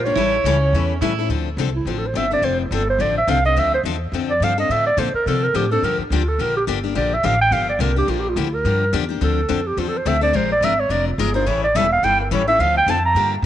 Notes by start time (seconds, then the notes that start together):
Already playing: A#1 F4
0.05 A#3 D4 G4 C#5
0.15 A1 E3 G3 C#4 E4 A4
0.44 C#2 E3 G3 C#4 E4 A4
0.73 E2 E3 G3 C#4 E4 A4
1.01 A2 E3 G3 C#4 E4 A4
1.19 C#4 E4 A4
1.29 D2 D3 F3 C4 D4 A4
1.57 C2 D3 F3 C4 D4 A4
1.76 E4
1.85 A1 D3 F3 C4 D4 F4 A4
1.98 A4
2.07 C5
2.14 G1 D3 F3 C4 D4 A4 E5
2.31 C4 D4 A4 D5
2.42 F1 D3 F3 C4 D4 A4 C5
2.61 E4
2.71 G1 D3 F3 C4 D4 A4
2.90 C5
2.99 A1 D3 F3 C4 D4 A4 D5
3.18 E5
3.27 C2 D3 F3 C4 D4 A4 F5
3.45 C4 D4 A4 D#5
3.56 D2 D3 F3 C4 D4 A4 E5
3.74 C5
3.83 E2 D3 F3 C4 D4 A4
4.12 F2 D3 F3 C4 D4 A4
4.31 D5
4.40 G2 D3 F3 C4 D4 A4 F5
4.58 C4 D4 A4 D#5
4.69 A2 D3 F3 C4 D4 A4 E5
4.87 D5
4.97 A#2 D3 F3 C4 D4 A4 C5
5.14 A#4, muted upright bass stroke
5.26 C3 D3 F3 C4 D4 A4
5.43 A#4
5.54 A2 D3 F3 C4 D4 G4 A4
5.71 C4 D4 A4
5.82 G2 D3 F3 A#3 D4 G4 A#4
5.98 D4, muted upright bass stroke
6.10 D2 D3 F3 A#3 D4 F4 G4
6.29 A4
6.38 A#1 D3 F3 A#3 D4 G4 A#4
6.57 G4
6.67 G1 D3 F3 A#3 D4 G4
6.84 A#3 D4 G4
6.95 A#1 D3 F3 A#3 D4 G4 D5
7.14 E5
7.23 A1 D3 F3 A#3 D4 G4 F5
7.41 G5
7.51 G1 D3 F3 A#3 D4 G4 F5
7.69 D5
7.79 C2 D3 F3 A#3 D4 G4 A#4
7.96 A#3 D4 G4
8.07 A#1 D3 F3 A#3 D4 F4 G4
8.20 G4
8.29 F4
8.36 D2 D3 F3 A#3 D4 E4 G4
8.54 A#4
8.65 G2 D3 F3 A#3 D4 G4
8.93 E2 D3 F3 A#3 D4 G4
9.09 A#3 D4 G4
9.21 D2 D3 F3 C4 D4 A4
9.49 F2 D3 F3 C4 D4 A4
9.67 G4
9.77 E2 D3 F3 C4 D4 F4 A4
9.89 A4
9.97 C5
10.05 D2 D3 F3 C4 D4 A4 E5
10.21 C4 D4 A4 D5
10.33 A#1 F3 G#3 D4 F4 A#4 C5
10.52 D5
10.61 G#1 F3 G#3 D4 F4 A#4 E5
10.80 C#5
10.89 F1 F3 G#3 D4 F4 A#4 D5
11.07 F4
11.18 G1 F3 G#3 D4 F4 G#4 A#4
11.34 D4 F4 A#4 C5
11.46 A1 E3 G3 C#4 E4 A4 C#5
11.64 D5
11.75 E1 E3 G3 C#4 E4 A4 E5
11.92 F5
12.03 G1 E3 G3 C#4 E4 A4 G5
12.21 A#4
12.31 A1 E3 G3 C#4 E4 A4 C#5
12.48 C#4 E4 A4 E5
12.59 D2 D3 F3 C4 D4 A4 F5
12.78 G5
12.86 F2 D3 F3 C4 D4 A4 A5
13.06 A#5
13.15 G2 D3 F3 A#3 D4 G4
13.42 A#2